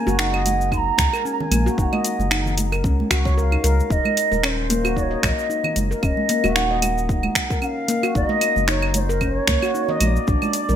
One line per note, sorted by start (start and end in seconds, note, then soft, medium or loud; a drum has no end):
0.00 10.76 G#3 medium
0.00 10.76 G#4 medium
0.00 0.21 G#5 loud
0.07 0.91 F#1 medium
0.07 0.18 F#4 medium
0.07 muted conga soft
0.07 cabasa soft
0.19 0.32 D#4 medium
0.19 0.72 F#5 medium
0.19 finger snap medium
0.19 cabasa soft
0.34 0.71 D#5 medium
0.34 claves medium
0.46 closed hi-hat medium
0.46 muted conga medium
0.46 cabasa medium
0.61 cabasa soft
0.72 0.86 D#4 medium
0.72 0.78 C6 loud
0.72 kick medium
0.72 cabasa soft
0.72 claves medium
0.77 1.27 A#5 loud
0.98 1.07 C#2 loud
0.98 finger snap medium
0.98 kick loud
0.98 closed hi-hat medium
0.98 muted conga soft
0.98 cabasa medium
1.13 1.24 A#4 medium
1.13 cabasa soft
1.13 claves medium
1.25 1.50 C#4 medium
1.25 1.34 G#5 medium
1.25 cabasa soft
1.32 1.42 A#5 medium
1.40 1.78 G#5 medium
1.40 low conga medium
1.51 1.69 A#1 medium
1.51 1.65 A#3 medium
1.51 closed hi-hat medium
1.51 high conga medium
1.51 cabasa medium
1.51 claves medium
1.66 1.77 F#4 medium
1.66 cabasa soft
1.78 1.87 F#1 loud
1.78 1.91 D#4 medium
1.78 1.84 G#5 medium
1.78 kick loud
1.78 cabasa soft
1.83 2.54 F#5 medium
1.93 2.30 D#5 medium
1.93 high conga medium
1.93 claves medium
2.04 closed hi-hat medium
2.04 cabasa medium
2.19 2.86 F#1 medium
2.19 muted conga soft
2.19 cabasa soft
2.31 2.45 D#4 medium
2.31 finger snap medium
2.31 cabasa soft
2.31 claves medium
2.46 low conga medium
2.46 cabasa soft
2.58 closed hi-hat medium
2.58 muted conga soft
2.58 cabasa medium
2.72 2.83 A#4 medium
2.72 cabasa soft
2.72 claves medium
2.84 3.02 C#2 loud
2.84 2.97 C#4 medium
2.84 kick loud
2.84 cabasa soft
3.00 high conga medium
3.10 3.57 C#2 medium
3.10 3.24 F#4 medium
3.10 finger snap medium
3.10 kick medium
3.10 closed hi-hat medium
3.10 cabasa medium
3.10 claves medium
3.25 3.32 C#5 medium
3.25 kick loud
3.25 cabasa soft
3.37 3.51 A#4 medium
3.37 3.93 F5 loud
3.37 cabasa soft
3.52 3.63 D#4 medium
3.52 claves medium
3.64 3.81 C#2 loud
3.64 3.78 A#4 medium
3.64 closed hi-hat medium
3.64 cabasa medium
3.78 high conga soft
3.78 cabasa soft
3.90 4.00 D#1 loud
3.90 4.04 D#4 medium
3.90 4.45 D#5 loud
3.90 kick loud
3.90 cabasa soft
4.05 high conga medium
4.05 claves medium
4.17 closed hi-hat medium
4.17 cabasa medium
4.32 5.16 D#1 medium
4.32 4.42 A#4 medium
4.32 muted conga medium
4.32 cabasa soft
4.43 4.69 C#4 medium
4.43 4.49 C#5 medium
4.43 finger snap medium
4.43 cabasa soft
4.43 claves medium
4.48 4.96 C5 medium
4.70 4.83 A#3 loud
4.70 closed hi-hat medium
4.70 muted conga soft
4.70 cabasa medium
4.85 4.96 F#4 loud
4.85 cabasa soft
4.85 claves medium
4.96 5.10 D#4 medium
4.96 5.02 D5 medium
4.96 kick medium
4.96 cabasa soft
5.01 5.24 C#5 medium
5.11 5.48 D#5 medium
5.23 5.32 A#1 loud
5.23 5.76 D#5 medium
5.23 finger snap medium
5.23 kick loud
5.23 closed hi-hat medium
5.23 muted conga soft
5.23 cabasa medium
5.23 claves medium
5.39 cabasa soft
5.50 5.64 D#4 medium
5.50 cabasa soft
5.64 low conga medium
5.64 claves medium
5.76 5.94 F#1 medium
5.76 closed hi-hat medium
5.76 high conga medium
5.76 cabasa medium
5.91 6.02 A#4 medium
5.91 cabasa soft
5.97 6.05 F5 medium
6.03 6.12 D#1 loud
6.03 6.28 C#4 medium
6.03 6.57 D#5 medium
6.03 kick loud
6.03 cabasa soft
6.03 claves medium
6.17 high conga medium
6.29 6.43 A#3 medium
6.29 closed hi-hat medium
6.29 cabasa medium
6.44 7.28 D#1 loud
6.44 6.55 F#4 medium
6.44 muted conga medium
6.44 cabasa soft
6.44 claves medium
6.55 6.69 D#4 medium
6.55 7.09 F#5 loud
6.55 finger snap medium
6.55 cabasa soft
6.71 7.08 D#5 medium
6.82 closed hi-hat medium
6.82 muted conga soft
6.82 cabasa medium
6.82 claves medium
6.98 cabasa soft
7.09 7.23 D#4 medium
7.09 kick loud
7.09 cabasa soft
7.23 high conga medium
7.23 claves medium
7.35 finger snap medium
7.35 kick medium
7.35 closed hi-hat medium
7.35 cabasa medium
7.50 7.61 A#4 medium
7.50 kick loud
7.50 cabasa soft
7.62 7.87 C#4 medium
7.62 8.11 F5 loud
7.62 7.66 F#5 loud
7.62 cabasa soft
7.62 claves medium
7.88 8.02 A#3 loud
7.88 closed hi-hat medium
7.88 cabasa medium
8.03 8.15 F#4 loud
8.03 cabasa soft
8.03 claves medium
8.15 8.24 F#1 medium
8.15 8.28 D#4 medium
8.15 8.65 D#5 loud
8.15 kick loud
8.15 cabasa soft
8.29 8.67 D#5 medium
8.29 high conga medium
8.41 closed hi-hat medium
8.41 cabasa medium
8.41 claves medium
8.56 9.41 F#1 medium
8.56 muted conga soft
8.56 cabasa soft
8.68 8.82 D#4 medium
8.68 8.93 C#5 medium
8.68 finger snap medium
8.68 cabasa soft
8.82 claves medium
8.94 9.00 C#5 medium
8.94 closed hi-hat medium
8.94 muted conga medium
8.94 cabasa medium
8.99 9.22 C5 medium
9.09 9.20 A#4 medium
9.09 cabasa soft
9.21 9.47 C#4 medium
9.21 9.36 C5 loud
9.21 kick medium
9.21 cabasa soft
9.21 claves medium
9.36 9.96 C#5 loud
9.47 9.57 C#2 loud
9.47 9.61 A#3 medium
9.47 finger snap medium
9.47 kick medium
9.47 closed hi-hat medium
9.47 muted conga medium
9.47 cabasa medium
9.62 9.74 F#4 loud
9.62 cabasa soft
9.62 claves medium
9.74 9.88 D#4 medium
9.74 cabasa soft
9.88 10.26 D#5 medium
9.88 low conga medium
9.95 10.01 D#5 medium
10.00 10.18 A#1 medium
10.00 10.07 D#5 medium
10.00 closed hi-hat medium
10.00 high conga medium
10.00 cabasa medium
10.00 claves medium
10.06 10.76 D5 loud
10.16 cabasa soft
10.27 10.37 A#1 medium
10.27 10.42 D4 medium
10.27 kick loud
10.27 cabasa soft
10.42 high conga medium
10.42 cabasa soft
10.42 claves medium
10.53 closed hi-hat medium
10.53 cabasa medium
10.69 10.76 A#1 medium
10.69 10.76 A#4 medium
10.69 muted conga medium
10.69 cabasa soft